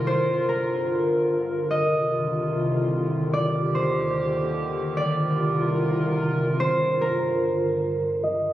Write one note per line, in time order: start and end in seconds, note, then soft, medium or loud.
0.00 1.67 F4 medium
0.00 3.30 A#4 medium
0.00 0.29 D5 loud
0.07 1.69 G2 medium
0.07 1.69 D3 medium
0.07 2.05 C5 loud
0.48 2.61 A#4 medium
1.70 3.32 C2 medium
1.70 3.32 C3 medium
1.70 6.56 D3 medium
1.70 6.56 D#3 medium
1.70 3.32 F4 medium
1.70 3.39 D#5 loud
3.33 4.95 D#2 medium
3.33 4.95 G4 loud
3.33 4.97 D5 loud
3.75 5.73 C5 medium
4.97 6.59 C2 medium
4.97 6.59 C3 medium
4.97 8.20 F4 medium
4.97 8.20 A#4 loud
4.97 6.82 D5 loud
6.60 8.22 G2 medium
6.60 8.22 D3 medium
6.60 8.53 C5 loud
7.01 8.53 A#4 medium
8.24 8.53 C2 medium
8.24 8.53 G2 medium
8.24 8.53 D3 medium
8.24 8.53 D#3 medium
8.24 8.53 F4 medium
8.24 8.53 A#4 medium
8.24 8.53 D#5 loud